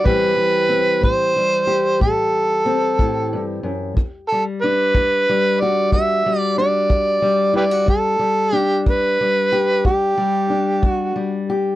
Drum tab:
BD |o--o--o--o--|o--o--o--o--|o--o--o--o--|